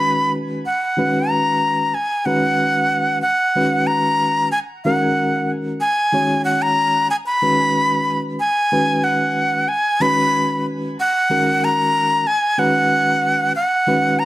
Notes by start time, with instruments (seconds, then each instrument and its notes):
Already playing: reed electric piano D#3 G#3 C#4 F#4 B4, flute B5
0.66 flute F#5
0.97 reed electric piano D#3 G#3 C#4 F#4 B4
1.30 flute A#5
1.94 flute G#5
2.26 reed electric piano D#3 G#3 C#4 F#4 B4, flute F#5
3.22 flute F#5
3.55 reed electric piano D#3 G#3 C#4 F#4 B4
3.87 flute A#5
4.52 flute G#5
4.84 reed electric piano D#3 G#3 C#4 F#4 A#4, flute F#5
5.81 flute G#5
6.13 reed electric piano D#3 G#3 C#4 F#4 C#5
6.45 flute F#5
6.62 flute A#5
7.10 flute G#5
7.26 flute B5
7.42 reed electric piano D#3 G#3 C#4 F#4 B4
8.40 flute G#5
8.72 reed electric piano D#3 G#3 C#4 F#4 B4
9.04 flute F#5
9.68 flute G#5
10.00 reed electric piano D#3 G#3 C#4 F#4 B4, flute B5
11.00 flute F#5
11.30 reed electric piano D#3 G#3 C#4 F#4 A#4
11.64 flute A#5
12.27 flute G#5
12.58 reed electric piano D#3 G#3 C#4 F#4 B4, flute F#5
13.56 flute F#5
13.87 reed electric piano D#3 G#3 C#4 F#4 B4
14.19 flute A#5